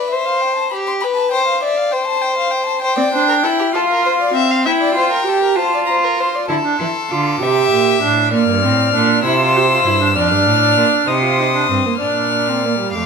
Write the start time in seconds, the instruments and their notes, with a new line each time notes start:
Already playing: violin B4
0.10 violin C5 E5
0.26 violin F5
0.41 violin G5
0.56 violin A5
0.70 violin G4 B5
0.87 violin C6
1.01 violin B4 B5
1.15 violin A5
1.32 violin C5 G5
1.48 violin F5
1.63 violin D5 E5
1.77 violin F5
1.92 violin C5 G5
2.07 violin A5
2.22 violin G5
2.38 violin F5
2.51 violin G5
2.66 violin A5
2.82 violin C5 G5
2.97 viola C4, violin D5
3.12 viola D4, violin C5
3.29 violin A#4
3.43 viola E4, violin A4
3.59 violin G4
3.72 viola F4, violin A4 F5
3.92 violin A#4
4.05 violin C5
4.20 violin D5
4.33 viola C4, violin E5
4.51 violin F5
4.64 viola E4, violin E5 G5
4.81 violin D5
4.94 viola F4, violin C5
5.12 violin A#4
5.25 viola G4, violin A4
5.43 violin A#4
5.55 viola F4, violin A5
5.59 violin C5
5.74 violin D5
5.86 violin C5 A#5
6.04 violin A#4
6.17 violin C5 C6
6.35 violin D5
6.48 cello D3, viola E4, violin A4 A5
6.65 viola D4
6.79 cello E3, viola E4, violin C6
7.10 cello D3, viola F4, violin D6
7.41 cello C3, viola G4, violin E5
7.72 cello A#2
8.02 cello A2, viola D4
8.33 cello A#2, viola A#3, violin D5 F6
8.49 cello G2
8.63 cello A2, viola C4
8.93 cello A#2, viola D4
9.24 cello C3, viola E4, violin C5 E6
9.40 viola F4
9.56 viola G4
9.71 viola F4
9.86 cello G2, viola E4
10.01 viola D4
10.16 cello F2, viola D4, violin D5 F6
10.31 cello G2
10.46 cello A2
10.77 cello A#2
11.07 cello C3, viola D#4, violin C5 D#6
11.23 viola F4
11.40 viola D#4
11.55 viola D4
11.70 cello G2, viola C4
11.85 viola A#3
12.00 cello A#2, viola D4, violin D5 F6
12.48 viola C4
12.64 viola A#3
12.79 viola G3
12.94 cello F2, viola A3, violin F5 D6